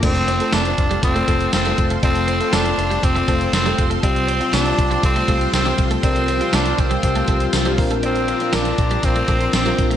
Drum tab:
CC |x---------------|----------------|----------------|----------------|
HH |xxxxxxxxxxxxxxxx|xxxxxxxxxxxxxxxx|xxxxxxxxxxxxxxxx|xxxxxxxxxxxxxxox|
TB |----x-------x---|----x-------x---|----x-------x---|----x-------x---|
SD |----o-------o---|----o-------o---|----o-------o---|----o-------o---|
BD |o-----o-o-o---o-|o-------o-o---o-|o-----o-o-o---o-|o-----o-o-o---o-|

CC |----------------|
HH |xxxxxxxxxxxxxxxx|
TB |----x-------x---|
SD |----o-------o---|
BD |------o-o-o---o-|